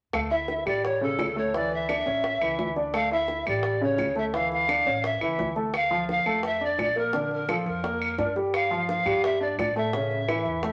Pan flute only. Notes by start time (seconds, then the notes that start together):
0.14 F5
0.31 E5
0.68 D5
0.85 C#5
1.03 A4
1.38 C#5
1.56 D5
1.74 E5
2.95 F5
3.13 E5
3.48 D5
3.84 C#5
4.18 E5
4.35 F5
4.53 F5
5.05 E5
5.76 F5
6.11 F5
6.46 E5
6.64 D5
6.82 D5
6.98 A#4
7.33 A#4
7.50 A4
7.68 A#4
8.54 F5
8.90 F5
9.25 E5
9.42 D5
9.59 D5
9.77 E5